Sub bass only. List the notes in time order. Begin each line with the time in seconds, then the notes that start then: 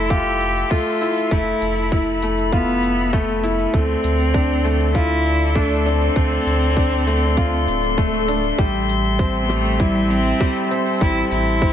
Already playing: F1
1.31 F1
1.61 F1
3.74 D2
4.04 D2
6.16 D2
6.46 D2
7.68 D1
8.58 A1
11.01 A1
11.31 A1